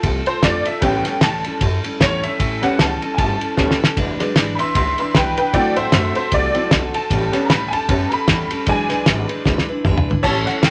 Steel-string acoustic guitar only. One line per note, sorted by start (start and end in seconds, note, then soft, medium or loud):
0.03 0.26 A3 medium
0.03 0.27 C4 medium
0.03 0.27 F4 medium
0.03 0.26 A4 medium
0.27 0.43 C4 soft
0.27 0.43 F4 medium
0.27 0.43 A4 medium
0.44 0.66 D3 medium
0.44 0.67 A3 medium
0.44 0.67 C4 medium
0.44 0.66 F4 medium
0.44 0.65 A4 medium
0.66 0.83 C4 soft
0.66 0.83 F4 medium
0.66 0.82 A4 medium
0.82 1.05 A2 medium
0.82 1.06 E3 medium
0.82 1.06 G3 medium
0.82 1.05 C#4 medium
0.82 1.05 E4 medium
0.82 1.04 A4 medium
1.05 1.21 G3 soft
1.05 1.21 C#4 medium
1.05 1.22 E4 medium
1.05 1.22 A4 medium
1.22 1.45 A2 medium
1.22 1.45 E3 medium
1.22 1.45 G3 medium
1.22 1.45 C#4 medium
1.22 1.44 E4 medium
1.22 1.43 A4 medium
1.45 1.60 G3 soft
1.45 1.60 C#4 medium
1.45 1.62 E4 medium
1.45 1.61 A4 medium
1.61 1.84 G3 medium
1.61 1.84 C#4 medium
1.61 1.83 E4 medium
1.61 1.82 A4 medium
1.83 2.00 G3 medium
1.83 2.01 C#4 medium
1.83 2.00 E4 medium
1.83 2.00 A4 medium
2.01 2.24 A2 medium
2.01 2.24 E3 medium
2.01 2.24 G3 medium
2.01 2.24 C#4 medium
2.01 2.23 E4 medium
2.01 2.22 A4 medium
2.23 2.39 G3 soft
2.23 2.39 C#4 soft
2.23 2.40 E4 medium
2.23 2.40 A4 medium
2.39 2.62 A2 medium
2.39 2.63 E3 medium
2.39 2.63 G3 medium
2.39 2.63 C#4 medium
2.39 2.63 E4 medium
2.39 2.62 A4 loud
2.63 2.79 G3 soft
2.63 2.79 C#4 soft
2.63 2.80 E4 medium
2.63 2.79 A4 medium
2.79 3.02 A2 medium
2.79 3.02 E3 medium
2.79 3.02 G3 medium
2.79 3.02 C#4 medium
2.79 3.01 E4 medium
2.79 3.00 A4 medium
3.02 3.17 G3 soft
3.02 3.17 C#4 medium
3.02 3.18 E4 medium
3.02 3.18 A4 medium
3.18 3.41 G3 medium
3.18 3.41 C#4 medium
3.18 3.40 E4 medium
3.18 3.39 A4 medium
3.40 3.56 G3 soft
3.40 3.57 C#4 medium
3.40 3.57 E4 soft
3.40 3.57 A4 medium
3.57 3.80 A2 medium
3.57 3.80 E3 medium
3.57 3.80 G3 medium
3.57 3.81 C#4 medium
3.57 3.80 E4 medium
3.57 3.79 A4 medium
3.80 3.96 G3 medium
3.80 3.97 C#4 medium
3.80 3.96 E4 medium
3.80 3.97 A4 medium
3.97 4.20 E3 medium
3.97 4.20 G#3 medium
3.97 4.20 D4 loud
3.97 4.20 E4 loud
3.97 4.19 B4 loud
4.20 4.36 D4 medium
4.20 4.36 E4 medium
4.20 4.36 B4 medium
4.36 4.59 E3 medium
4.36 4.59 G#3 medium
4.36 4.59 D4 loud
4.36 4.59 E4 medium
4.36 4.58 B4 medium
4.59 4.74 D4 soft
4.59 4.75 E4 medium
4.59 4.75 B4 medium
4.75 4.98 G#3 medium
4.75 4.98 D4 medium
4.75 4.98 E4 medium
4.75 4.97 B4 medium
4.98 5.14 D4 medium
4.98 5.15 E4 medium
4.98 5.14 B4 medium
5.15 5.37 E3 medium
5.15 5.38 G#3 medium
5.15 5.38 D4 medium
5.15 5.37 E4 medium
5.15 5.36 B4 medium
5.37 5.54 D4 soft
5.37 5.54 E4 medium
5.37 5.54 B4 medium
5.54 5.77 D3 medium
5.54 5.77 A3 medium
5.54 5.77 C4 medium
5.54 5.77 F#4 loud
5.54 5.75 A4 medium
5.77 5.93 C4 soft
5.77 5.93 F#4 medium
5.77 5.93 A4 medium
5.93 6.16 D3 medium
5.93 6.16 A3 medium
5.93 6.16 C4 medium
5.93 6.16 F#4 medium
5.93 6.15 A4 medium
6.16 6.32 C4 soft
6.16 6.33 F#4 soft
6.16 6.32 A4 medium
6.32 6.55 A3 medium
6.32 6.55 C4 medium
6.32 6.55 F#4 medium
6.32 6.53 A4 medium
6.55 6.71 C4 soft
6.55 6.71 F#4 medium
6.55 6.71 A4 medium
6.71 6.94 D3 medium
6.71 6.94 A3 medium
6.71 6.95 C4 medium
6.71 6.95 F#4 medium
6.71 6.93 A4 medium
6.95 7.11 C4 soft
6.95 7.11 F#4 medium
6.95 7.11 A4 medium
7.10 7.33 A2 medium
7.10 7.33 E3 medium
7.10 7.34 G3 medium
7.10 7.34 C#4 medium
7.10 7.33 G4 medium
7.10 7.32 A4 medium
7.33 7.50 G3 soft
7.33 7.50 C#4 soft
7.33 7.50 G4 medium
7.33 7.50 A4 medium
7.50 7.73 A2 medium
7.50 7.73 E3 medium
7.50 7.73 G3 medium
7.50 7.72 C#4 medium
7.50 7.71 G4 medium
7.50 7.71 A4 medium
7.72 7.87 G3 soft
7.72 7.88 C#4 soft
7.72 7.88 G4 medium
7.72 7.89 A4 medium
7.88 8.11 G3 medium
7.88 8.10 C#4 medium
7.88 8.10 G4 medium
7.88 8.09 A4 medium
8.11 8.27 G3 soft
8.11 8.28 C#4 medium
8.11 8.28 G4 medium
8.11 8.28 A4 medium
8.28 8.51 A2 medium
8.28 8.51 E3 medium
8.28 8.51 G3 medium
8.28 8.51 C#4 medium
8.28 8.50 G4 medium
8.28 8.49 A4 medium
8.50 8.66 G3 soft
8.50 8.66 C#4 medium
8.50 8.67 G4 medium
8.50 8.67 A4 medium
8.66 8.90 E3 medium
8.66 8.90 G#3 medium
8.66 8.90 D4 medium
8.66 8.89 E4 loud
8.66 8.88 B4 loud
8.89 9.06 D4 soft
8.89 9.05 E4 medium
8.89 9.06 B4 medium
9.06 9.29 E3 medium
9.06 9.29 G#3 medium
9.06 9.29 D4 medium
9.06 9.28 E4 medium
9.06 9.27 B4 medium
9.28 9.45 D4 medium
9.28 9.45 E4 medium
9.28 9.45 B4 medium
9.45 9.68 G#3 medium
9.45 9.68 D4 medium
9.45 9.68 E4 medium
9.45 9.67 B4 medium
9.68 9.85 D4 medium
9.68 9.85 E4 medium
9.68 9.85 B4 medium
9.86 10.08 E3 medium
9.86 10.08 G#3 medium
9.86 10.08 D4 loud
9.86 10.09 E4 loud
9.86 10.07 B4 loud
10.09 10.25 D4 medium
10.09 10.25 E4 medium
10.09 10.24 B4 medium
10.25 10.47 A2 medium
10.25 10.47 E3 loud
10.25 10.48 G3 loud
10.25 10.48 C#4 loud
10.25 10.47 E4 loud
10.25 10.46 A4 loud
10.47 10.63 G3 medium
10.47 10.63 C#4 medium
10.47 10.63 E4 medium
10.47 10.63 A4 medium
10.63 10.70 A2 medium
10.63 10.70 E3 medium
10.63 10.70 G3 medium
10.63 10.70 C#4 medium
10.63 10.70 E4 loud
10.63 10.70 A4 loud